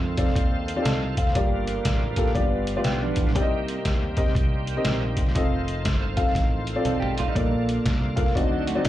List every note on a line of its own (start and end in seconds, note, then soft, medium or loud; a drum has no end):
0.00 0.28 F2 medium
0.00 1.34 D#3 medium
0.00 3.31 F3 medium
0.00 1.33 C4 medium
0.00 1.34 C4 medium
0.00 1.33 D#4 medium
0.00 1.33 F4 medium
0.00 3.30 F4 medium
0.00 1.31 A4 medium
0.17 0.57 C4 medium
0.17 0.57 F4 medium
0.17 0.57 A4 medium
0.17 0.57 D5 medium
0.17 kick medium
0.17 closed hi-hat medium
0.27 snare soft
0.36 0.78 D#2 medium
0.36 kick medium
0.36 closed hi-hat medium
0.68 closed hi-hat medium
0.76 1.21 C4 medium
0.76 1.21 F4 medium
0.76 0.81 G4 medium
0.76 0.86 D5 medium
0.82 1.18 C2 medium
0.82 1.24 A4 medium
0.82 1.16 A5 medium
0.82 snare loud
0.82 closed hi-hat medium
0.87 1.17 D#5 soft
1.17 1.33 D#2 medium
1.17 1.65 C5 soft
1.17 1.65 F5 medium
1.17 kick medium
1.17 closed hi-hat medium
1.27 snare soft
1.34 1.78 G1 medium
1.34 2.14 G2 medium
1.34 3.33 D3 medium
1.34 3.33 G3 medium
1.34 2.34 A#3 medium
1.34 1.86 A#3 medium
1.34 2.32 D4 medium
1.34 2.32 F4 medium
1.34 1.86 F4 medium
1.34 2.33 G4 medium
1.34 1.86 G4 medium
1.34 2.34 A#4 medium
1.34 1.86 D5 medium
1.34 kick loud
1.34 closed hi-hat medium
1.67 closed hi-hat medium
1.85 2.28 A1 medium
1.85 kick medium
1.85 snare medium
1.85 closed hi-hat medium
2.16 2.35 A#3 medium
2.16 2.33 F4 medium
2.16 2.33 G4 medium
2.16 2.35 A4 medium
2.16 kick medium
2.16 closed hi-hat medium
2.26 snare soft
2.33 2.77 G1 loud
2.33 3.13 G2 medium
2.33 2.70 B3 medium
2.33 3.35 B3 medium
2.33 3.33 D4 medium
2.33 3.33 F4 medium
2.33 2.70 F4 medium
2.33 5.31 G4 medium
2.33 2.70 G4 medium
2.33 3.34 B4 medium
2.33 2.71 D5 loud
2.33 kick medium
2.33 closed hi-hat medium
2.67 closed hi-hat medium
2.76 2.86 A3 medium
2.76 3.20 B3 medium
2.76 3.21 F4 medium
2.76 2.84 F4 medium
2.76 3.20 G4 medium
2.76 3.20 D5 medium
2.84 3.12 B1 medium
2.84 3.00 B3 medium
2.84 3.00 G4 medium
2.84 snare loud
2.84 closed hi-hat medium
3.03 3.35 F3 medium
3.03 3.34 D4 medium
3.16 3.35 A1 medium
3.16 kick medium
3.16 closed hi-hat medium
3.27 snare soft
3.34 3.78 C2 medium
3.34 4.13 C3 medium
3.34 7.31 D#3 medium
3.34 5.33 G3 medium
3.34 5.33 A#3 medium
3.34 7.30 C4 medium
3.34 3.86 C4 medium
3.34 7.30 D#4 medium
3.34 5.32 G4 medium
3.34 3.86 G4 medium
3.34 5.32 A#4 medium
3.34 3.86 A#4 medium
3.34 7.30 C5 medium
3.34 3.43 D5 medium
3.34 kick medium
3.34 closed hi-hat medium
3.42 3.89 D#5 medium
3.68 closed hi-hat medium
3.85 4.28 D#2 medium
3.85 kick medium
3.85 snare medium
3.85 closed hi-hat medium
4.17 4.57 C4 medium
4.17 4.57 G4 medium
4.17 4.57 A#4 medium
4.17 4.57 D#5 medium
4.17 kick medium
4.17 closed hi-hat medium
4.26 snare soft
4.35 4.77 C2 medium
4.35 kick loud
4.35 closed hi-hat medium
4.67 closed hi-hat medium
4.77 5.21 C4 medium
4.77 5.21 G4 medium
4.77 5.21 A#4 medium
4.77 5.21 D#5 medium
4.84 5.17 A#1 medium
4.84 snare loud
4.84 closed hi-hat medium
5.17 5.32 D2 medium
5.17 kick medium
5.17 closed hi-hat medium
5.27 snare soft
5.35 5.85 F1 medium
5.35 8.33 F3 medium
5.35 5.86 C4 medium
5.35 8.32 F4 medium
5.35 5.86 F4 medium
5.35 8.33 F4 medium
5.35 8.32 A4 medium
5.35 5.86 A4 medium
5.35 8.89 A4 medium
5.35 5.86 D#5 medium
5.35 kick loud
5.35 closed hi-hat medium
5.68 closed hi-hat medium
5.85 6.28 G1 medium
5.85 kick medium
5.85 snare loud
5.85 closed hi-hat medium
6.17 6.56 C4 medium
6.17 6.57 F4 medium
6.17 6.57 A4 medium
6.17 6.56 F5 medium
6.17 kick medium
6.17 closed hi-hat medium
6.27 snare soft
6.35 6.77 A1 medium
6.35 kick loud
6.35 snare soft
6.35 closed hi-hat medium
6.67 closed hi-hat medium
6.76 7.20 C4 medium
6.76 7.20 F4 medium
6.76 7.20 A4 medium
6.76 7.20 D5 medium
6.85 7.27 B1 medium
6.85 7.01 C4 medium
6.85 7.00 A4 medium
6.85 closed hi-hat medium
6.85 mid tom medium
7.00 7.15 G4 medium
7.00 floor tom medium
7.18 7.26 A3 medium
7.18 7.26 F4 medium
7.18 closed hi-hat medium
7.18 floor tom medium
7.28 7.51 G3 medium
7.28 7.50 D#4 medium
7.34 7.78 A#1 medium
7.34 8.13 A#2 medium
7.34 8.34 D3 medium
7.34 8.33 A#3 medium
7.34 8.34 A#3 medium
7.34 7.86 A#3 medium
7.34 7.86 F4 medium
7.34 7.86 A4 medium
7.34 8.89 D5 medium
7.34 7.86 D5 medium
7.34 kick loud
7.34 closed hi-hat medium
7.69 closed hi-hat medium
7.86 8.28 C2 medium
7.86 kick medium
7.86 snare loud
7.86 closed hi-hat medium
8.16 8.35 A#3 medium
8.16 8.35 F4 medium
8.16 8.35 A4 medium
8.16 8.34 F5 medium
8.16 kick medium
8.16 closed hi-hat medium
8.26 snare soft
8.35 8.78 D2 medium
8.35 8.89 D3 medium
8.35 8.89 F#3 medium
8.35 8.71 C4 medium
8.35 8.89 C4 medium
8.35 8.70 D#4 medium
8.35 8.89 D#4 medium
8.35 8.71 F#4 medium
8.35 8.89 F#4 medium
8.35 8.89 C5 medium
8.35 8.71 D5 medium
8.35 kick medium
8.35 closed hi-hat medium
8.51 8.67 F#3 medium
8.51 8.66 D4 medium
8.67 8.76 A3 medium
8.67 8.75 F#4 medium
8.67 closed hi-hat medium
8.75 8.89 F#3 medium
8.75 8.89 C4 medium
8.75 8.89 D#4 medium
8.75 8.89 F#4 medium
8.75 8.89 D5 medium
8.85 8.89 G#1 medium
8.85 snare loud
8.85 closed hi-hat medium